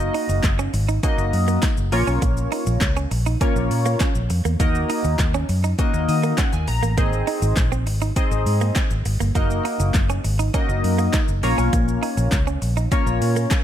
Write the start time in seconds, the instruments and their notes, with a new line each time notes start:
Already playing: synth keys A#3 D#4 F#4 A#4 D#5
0.00 shaker
0.14 clean electric guitar D#4, open hi-hat, shaker
0.29 fingered electric bass F#1, muted clean electric guitar stroke, shaker
0.43 kick, snare, clap, closed hi-hat, shaker
0.59 clean electric guitar C#4, shaker
0.74 fingered electric bass G#1, muted clean electric guitar stroke, open hi-hat, shaker
0.89 clean electric guitar D#4, shaker
1.03 synth keys A#3 D#4 F#4 A#4 D#5, clean electric guitar C#4, kick, closed hi-hat, shaker
1.18 fingered electric bass F#1, muted clean electric guitar stroke, shaker
1.33 fingered electric bass F#2, open hi-hat, shaker
1.48 clean electric guitar A#3, shaker
1.62 clean electric guitar D#4, kick, snare, clap, closed hi-hat, shaker
1.77 fingered electric bass F#1, shaker
1.92 fingered electric bass A#1, synth keys A#3 C#4 F4 A#4 C#5, muted clean electric guitar stroke, open hi-hat, shaker
2.07 fingered electric bass B1, clean electric guitar C#4, shaker
2.22 clean electric guitar A#3, kick, closed hi-hat, shaker
2.37 shaker
2.52 clean electric guitar D#4, open hi-hat, shaker
2.67 fingered electric bass A#1, muted clean electric guitar stroke, shaker
2.81 fingered electric bass C#2, kick, snare, clap, closed hi-hat, shaker
2.96 clean electric guitar C#4, shaker
3.11 fingered electric bass A#1, muted clean electric guitar stroke, open hi-hat, shaker
3.26 clean electric guitar D#4, shaker
3.41 synth keys A#3 C#4 F4 A#4 C#5, clean electric guitar C#4, kick, closed hi-hat, shaker
3.56 fingered electric bass A#1, muted clean electric guitar stroke, shaker
3.71 fingered electric bass A#2, open hi-hat, shaker
3.85 clean electric guitar A#3, shaker
4.00 clean electric guitar C#4, kick, snare, clap, closed hi-hat, shaker
4.15 fingered electric bass A#1, shaker
4.30 fingered electric bass F2, muted clean electric guitar stroke, open hi-hat, shaker
4.45 fingered electric bass E2, clean electric guitar A#3, shaker
4.60 fingered electric bass D#2, synth keys A#3 D#4 F#4 A#4 D#5, clean electric guitar A#3, kick, closed hi-hat, shaker
4.75 shaker
4.90 clean electric guitar D#4, open hi-hat, shaker
5.04 fingered electric bass D#2, muted clean electric guitar stroke, shaker
5.18 fingered electric bass D#2, kick, snare, clap, closed hi-hat, shaker
5.34 clean electric guitar C#4, shaker
5.49 fingered electric bass F#2, muted clean electric guitar stroke, open hi-hat, shaker
5.64 clean electric guitar D#4, shaker
5.79 synth keys A#3 D#4 F#4 A#4 D#5, clean electric guitar C#4, kick, closed hi-hat, shaker
5.94 fingered electric bass D#2, muted clean electric guitar stroke, shaker
6.08 fingered electric bass D#3, synth keys D#5, open hi-hat, shaker
6.23 clean electric guitar A#3, shaker
6.37 clean electric guitar C#4, synth keys F#5, kick, snare, clap, closed hi-hat, shaker
6.53 fingered electric bass D#2, synth keys G#5, shaker
6.68 fingered electric bass A#1, synth keys A#5, muted clean electric guitar stroke, open hi-hat, shaker
6.83 fingered electric bass A1, clean electric guitar A#3, shaker
6.97 fingered electric bass G#1, clean electric guitar A#3, synth keys C4 D#4 G#4 C5 D#5, kick, closed hi-hat, shaker
7.13 shaker
7.27 clean electric guitar D#4, open hi-hat, shaker
7.42 fingered electric bass G#1, muted clean electric guitar stroke, shaker
7.56 kick, snare, clap, closed hi-hat, shaker
7.72 clean electric guitar C4, shaker
7.87 fingered electric bass G#1, muted clean electric guitar stroke, open hi-hat, shaker
8.02 clean electric guitar D#4, shaker
8.16 synth keys C4 D#4 G#4 C5 D#5, clean electric guitar C4, kick, closed hi-hat, shaker
8.31 fingered electric bass G#1, muted clean electric guitar stroke, shaker
8.46 fingered electric bass G#2, open hi-hat, shaker
8.61 clean electric guitar A#3, shaker
8.75 clean electric guitar C4, kick, snare, clap, closed hi-hat, shaker
8.91 fingered electric bass G#1, shaker
9.05 fingered electric bass G#1, muted clean electric guitar stroke, open hi-hat, shaker
9.20 fingered electric bass G1, clean electric guitar A#3, shaker
9.35 fingered electric bass F#1, synth keys A#3 D#4 F#4 A#4 D#5, clean electric guitar A#3, kick, closed hi-hat, shaker
9.50 shaker
9.65 clean electric guitar D#4, open hi-hat, shaker
9.80 fingered electric bass F#1, muted clean electric guitar stroke, shaker
9.94 fingered electric bass F#1, kick, snare, clap, closed hi-hat, shaker
10.10 clean electric guitar C#4, shaker
10.24 fingered electric bass G#1, muted clean electric guitar stroke, open hi-hat, shaker
10.39 clean electric guitar D#4, shaker
10.54 synth keys A#3 D#4 F#4 A#4 D#5, clean electric guitar C#4, kick, closed hi-hat, shaker
10.69 fingered electric bass F#1, muted clean electric guitar stroke, shaker
10.84 fingered electric bass F#2, open hi-hat, shaker
10.99 clean electric guitar A#3, shaker
11.13 clean electric guitar D#4, kick, snare, clap, closed hi-hat, shaker
11.28 fingered electric bass F#1, shaker
11.43 fingered electric bass A#1, synth keys A#3 C#4 F4 A#4 C#5, muted clean electric guitar stroke, open hi-hat, shaker
11.58 fingered electric bass B1, clean electric guitar C#4, shaker
11.73 fingered electric bass A#1, clean electric guitar A#3, kick, closed hi-hat, shaker
11.88 shaker
12.03 clean electric guitar D#4, open hi-hat, shaker
12.17 fingered electric bass A#1, muted clean electric guitar stroke, shaker
12.31 fingered electric bass C#2, kick, snare, clap, closed hi-hat, shaker
12.47 clean electric guitar C#4, shaker
12.62 fingered electric bass A#1, muted clean electric guitar stroke, open hi-hat, shaker
12.77 clean electric guitar D#4, shaker
12.92 synth keys A#3 C#4 F4 A#4 C#5, clean electric guitar C#4, kick, closed hi-hat, shaker
13.07 fingered electric bass A#1, muted clean electric guitar stroke, shaker
13.21 fingered electric bass A#2, open hi-hat, shaker
13.36 clean electric guitar A#3, shaker
13.50 clean electric guitar C#4, kick, snare, clap, closed hi-hat, shaker